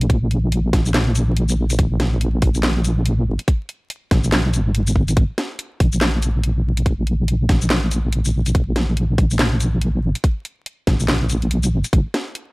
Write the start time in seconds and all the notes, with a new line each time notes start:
Already playing: A#1
0.01 closed hi-hat
0.10 kick, closed hi-hat
0.31 closed hi-hat
0.52 closed hi-hat
0.73 A#1, kick, snare, open hi-hat
0.86 shaker
0.94 snare, clap, closed hi-hat
1.15 closed hi-hat, shaker
1.37 closed hi-hat
1.49 shaker
1.70 closed hi-hat, shaker
1.79 kick, closed hi-hat
2.00 snare, closed hi-hat
2.21 closed hi-hat
2.42 A#1, kick, open hi-hat
2.55 shaker
2.63 snare, clap, closed hi-hat
2.85 closed hi-hat, shaker
3.06 closed hi-hat
3.27 G#1
3.39 closed hi-hat
3.48 kick, closed hi-hat
3.69 closed hi-hat
3.90 closed hi-hat
4.11 A#1, kick, snare, open hi-hat
4.24 shaker
4.32 B1, snare, clap, closed hi-hat
4.53 G#1, closed hi-hat, shaker
4.75 closed hi-hat
4.87 closed hi-hat, shaker
4.96 kick
5.08 closed hi-hat, shaker
5.17 G#1, kick, closed hi-hat
5.38 snare, closed hi-hat
5.59 closed hi-hat
5.80 A#1, kick, open hi-hat
5.93 shaker
6.01 snare, clap, closed hi-hat
6.22 closed hi-hat, shaker
6.43 closed hi-hat
6.77 closed hi-hat
6.86 kick, closed hi-hat
7.07 closed hi-hat
7.28 closed hi-hat
7.49 A#1, kick, snare, open hi-hat
7.62 shaker
7.70 snare, clap, closed hi-hat
7.91 closed hi-hat, shaker
8.12 closed hi-hat
8.25 shaker
8.46 closed hi-hat, shaker
8.55 kick, closed hi-hat
8.76 snare, closed hi-hat
8.97 closed hi-hat
9.18 A#1, kick, open hi-hat
9.31 shaker
9.39 snare, clap, closed hi-hat
9.60 closed hi-hat, shaker
9.81 closed hi-hat
10.03 G#1
10.15 closed hi-hat
10.24 kick, closed hi-hat
10.45 closed hi-hat
10.66 closed hi-hat
10.87 A#1, kick, snare, open hi-hat
11.00 shaker
11.08 snare, clap, closed hi-hat
11.30 closed hi-hat, shaker
11.42 closed hi-hat
11.51 B1, closed hi-hat
11.63 closed hi-hat, shaker
11.72 G#1
11.84 closed hi-hat, shaker
11.93 G#1, kick, closed hi-hat
12.14 snare, closed hi-hat
12.35 closed hi-hat